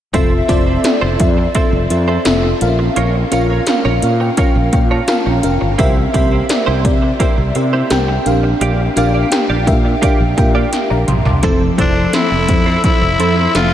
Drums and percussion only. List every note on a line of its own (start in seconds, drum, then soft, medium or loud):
0.14 kick loud
0.14 closed hi-hat medium
0.49 kick medium
0.49 closed hi-hat medium
0.84 snare loud
0.84 closed hi-hat medium
1.20 kick medium
1.20 closed hi-hat medium
1.55 kick medium
1.55 closed hi-hat medium
1.90 closed hi-hat medium
2.25 snare loud
2.25 closed hi-hat medium
2.61 closed hi-hat medium
2.96 closed hi-hat medium
3.32 closed hi-hat medium
3.67 snare loud
3.67 closed hi-hat loud
4.02 closed hi-hat medium
4.37 kick medium
4.37 closed hi-hat medium
4.73 kick medium
4.73 closed hi-hat medium
5.08 snare loud
5.08 closed hi-hat medium
5.43 closed hi-hat medium
5.79 kick loud
5.79 closed hi-hat medium
6.14 kick medium
6.14 closed hi-hat medium
6.49 snare loud
6.49 closed hi-hat loud
6.85 kick medium
6.85 closed hi-hat medium
7.20 kick medium
7.20 closed hi-hat medium
7.55 closed hi-hat medium
7.90 snare loud
7.90 closed hi-hat medium
8.26 closed hi-hat medium
8.61 closed hi-hat medium
8.97 closed hi-hat medium
9.32 snare loud
9.32 closed hi-hat loud
9.67 kick medium
9.67 closed hi-hat medium
10.03 kick medium
10.03 closed hi-hat medium
10.38 kick medium
10.38 closed hi-hat medium
10.73 snare medium
10.73 closed hi-hat medium
11.08 closed hi-hat medium
11.08 mid tom medium
11.25 floor tom medium
11.43 kick loud
11.43 closed hi-hat medium
11.78 kick medium
11.78 closed hi-hat medium
12.13 snare medium
12.13 closed hi-hat loud
12.48 kick medium
12.48 closed hi-hat medium
12.84 kick medium
12.84 closed hi-hat medium
13.20 closed hi-hat medium
13.55 snare loud
13.55 closed hi-hat medium